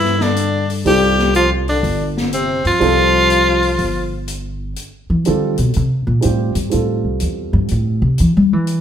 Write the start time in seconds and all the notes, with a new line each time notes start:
Already playing: G2 E3 E4
0.04 snare
0.20 D3 D4, snare
0.36 closed hi-hat
0.70 open hi-hat
0.85 C2 G3 C4 F4 G4 A4, open hi-hat
1.19 snare
1.34 F3 F4, closed hi-hat
1.68 D3 D4, open hi-hat
1.83 G1, open hi-hat
2.17 snare
2.33 C3 C4, closed hi-hat
2.65 G2 F3 F4, open hi-hat
2.80 C2 G3 C4 F4 A4, open hi-hat
3.30 closed hi-hat
3.63 open hi-hat
3.79 G1, open hi-hat
4.28 closed hi-hat
4.76 closed hi-hat
5.10 E3
5.25 D3 G3 C4 F4 A4, closed hi-hat
5.57 B2, closed hi-hat
5.74 C3, closed hi-hat
6.07 A#2
6.21 G3 C4 F4 G4, closed hi-hat
6.25 A2
6.55 G2, closed hi-hat
6.70 A2 G3 C4 F4 A4, closed hi-hat
7.04 C2
7.20 E2, closed hi-hat
7.53 G2
7.68 A2, closed hi-hat
8.02 C3
8.18 E3, closed hi-hat
8.37 G3
8.53 E3
8.67 closed hi-hat